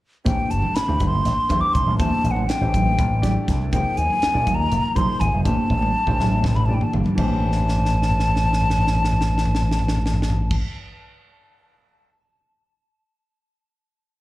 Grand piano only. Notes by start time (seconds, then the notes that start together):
0.25 E3 A3 D4 G4 C5
0.88 E3 A3 D4 G4 C5
1.49 E3 A3 D4 G4 C5
1.99 E3 A3 D4 G4 C5
2.61 E3 A3 D4 G4 C5
3.22 E3 A3 D4 G4 D5
3.72 F3 A#3 D#4 G#4 C5
4.34 F3 A#3 D#4 G#4 D5
4.95 F3 A#3 D#4 G#4 C5
5.45 E3 A3 D4 G4 C5
6.07 E3 A3 D4 G4 C5
6.68 E3 A3 D4 G4 D5
7.15 E3 A3 D4 G4 C5